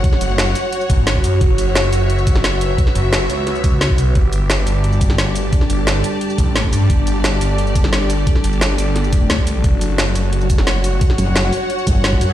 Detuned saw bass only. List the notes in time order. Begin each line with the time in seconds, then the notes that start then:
0.21 F#1
0.90 G1
1.24 F#2
1.41 F#1
1.93 F#1
2.95 F#1
3.30 C#2
3.90 C2
4.15 G1
4.67 G1
5.70 G1
6.38 A1
6.73 G2
6.90 G1
7.41 G1
8.44 G1
8.78 G1
9.30 D2
9.64 F#1
10.16 F#1